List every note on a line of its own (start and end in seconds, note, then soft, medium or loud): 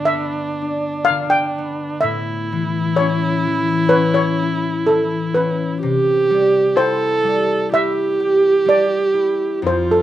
0.00 1.99 G2 medium
0.00 1.08 D3 soft
0.00 0.13 B3 soft
0.00 2.02 D4 medium
0.00 0.12 D5 medium
0.05 1.10 E5 medium
0.13 1.58 B3 soft
0.62 3.06 D4 soft
1.05 1.32 F5 medium
1.09 2.11 D3 soft
1.30 2.06 G5 medium
1.58 4.69 B3 soft
2.01 5.87 A2 medium
2.01 2.93 E5 medium
2.05 5.78 E4 loud
2.52 3.46 E3 medium
2.96 3.95 C#4 soft
2.96 3.88 C#5 medium
3.47 4.88 E3 soft
3.89 4.17 B4 medium
3.89 3.95 C#5 medium
3.95 5.36 C#4 soft
4.14 4.89 C#5 medium
4.42 6.77 E4 medium
4.87 5.87 E3 soft
4.87 5.36 A4 medium
5.34 5.89 C#4 soft
5.34 5.79 B4 medium
5.82 9.68 C3 medium
5.82 6.77 G4 loud
6.30 7.23 G3 soft
6.76 7.71 E4 medium
6.76 7.71 A4 loud
6.76 7.75 C5 medium
7.24 8.64 G3 soft
7.72 9.13 E4 medium
7.72 9.59 G4 loud
7.72 8.63 E5 loud
8.20 10.02 G4 medium
8.65 9.68 G3 soft
8.65 9.67 D5 medium
9.14 9.68 E4 medium
9.62 10.02 F2 medium
9.62 10.02 F4 loud
9.67 9.90 C5 medium
9.91 10.02 A4 medium